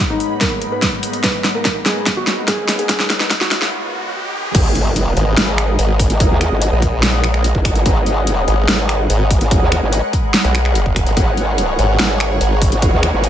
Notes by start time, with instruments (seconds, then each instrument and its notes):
Already playing: analog synth pad G#2 G#3 A#3 B3 D#4, ambient pad G#4 C#5 F#5 B5, riser
0.10 felt piano D#4
0.20 open hi-hat
0.41 felt piano A#4, kick, snare, closed hi-hat
0.62 closed hi-hat
0.72 felt piano B4
0.82 kick, snare, closed hi-hat
1.03 open hi-hat
1.13 closed hi-hat
1.24 felt piano B4, kick, snare, closed hi-hat
1.44 snare, closed hi-hat
1.55 felt piano A#4
1.65 kick, snare, closed hi-hat
1.86 felt piano G#4, snare, open hi-hat
2.06 kick, snare, closed hi-hat
2.17 felt piano F#4
2.27 snare, closed hi-hat
2.48 felt piano G#4, kick, snare, closed hi-hat
2.68 snare, open hi-hat
2.79 felt piano G#4, closed hi-hat
2.89 kick, snare, closed hi-hat
3.00 snare
3.10 snare, closed hi-hat
3.20 snare, closed hi-hat
3.31 kick, snare, closed hi-hat
3.41 felt piano F#4, snare
3.51 snare, open hi-hat
3.62 snare
4.55 wobble bass G#1, analog synth pad G#3 G#4 A#4 B4 D#5, ambient pad G#4, kick, closed hi-hat, crash, impact
4.75 closed hi-hat
4.81 ambient pad C#5
4.96 ambient pad F#5, closed hi-hat
5.17 wobble bass G#1, closed hi-hat
5.37 wobble bass G#1, snare, closed hi-hat
5.58 finger snap, closed hi-hat
5.79 wobble bass G#1, closed hi-hat
5.99 kick, open hi-hat
6.10 wobble bass G#1, closed hi-hat
6.20 kick, closed hi-hat
6.31 wobble bass D#2
6.41 finger snap, closed hi-hat
6.51 wobble bass G#1
6.62 closed hi-hat
6.72 wobble bass A#1
6.82 kick, closed hi-hat
7.03 snare, closed hi-hat
7.24 finger snap, closed hi-hat
7.34 finger snap
7.44 closed hi-hat
7.55 wobble bass G#1, kick
7.65 finger snap, kick, open hi-hat
7.75 closed hi-hat
7.86 wobble bass G#1, kick, closed hi-hat
8.06 closed hi-hat
8.27 closed hi-hat
8.48 wobble bass G#1, closed hi-hat
8.68 wobble bass G#1, snare, closed hi-hat
8.89 finger snap, closed hi-hat
9.10 wobble bass G#1, closed hi-hat
9.31 kick, open hi-hat
9.41 wobble bass G#1, closed hi-hat
9.51 kick, closed hi-hat
9.62 wobble bass D#2
9.72 finger snap, closed hi-hat
9.82 wobble bass G#1
9.93 closed hi-hat
10.13 kick, closed hi-hat
10.34 snare, closed hi-hat
10.44 wobble bass B1, closed hi-hat
10.55 finger snap, closed hi-hat
10.65 finger snap
10.75 closed hi-hat
10.86 wobble bass F#1, kick
10.96 finger snap, kick, open hi-hat
11.06 wobble bass G#1, closed hi-hat
11.17 wobble bass G#1, analog synth pad C#5, kick, closed hi-hat
11.37 closed hi-hat
11.58 closed hi-hat
11.79 wobble bass G#1, closed hi-hat
11.99 wobble bass G#1, snare, closed hi-hat
12.20 finger snap, closed hi-hat
12.41 wobble bass G#1, closed hi-hat
12.62 kick, open hi-hat
12.72 wobble bass G#1, closed hi-hat
12.82 kick, closed hi-hat
12.93 wobble bass D#2
13.03 finger snap, closed hi-hat
13.13 wobble bass G#1
13.24 closed hi-hat